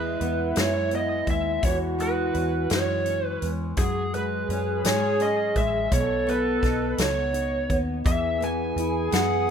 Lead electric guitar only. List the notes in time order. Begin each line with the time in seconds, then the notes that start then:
Already playing: B4
0.60 C#5
0.95 D#5
1.30 E5
1.65 C#5
2.02 B4
2.72 C#5
3.27 B4
3.79 G#4
4.15 B4
4.87 C#5
5.22 D#5
5.57 E5
5.94 C#5
6.30 B4
7.01 C#5
8.07 E5
8.44 G#5
9.14 F#5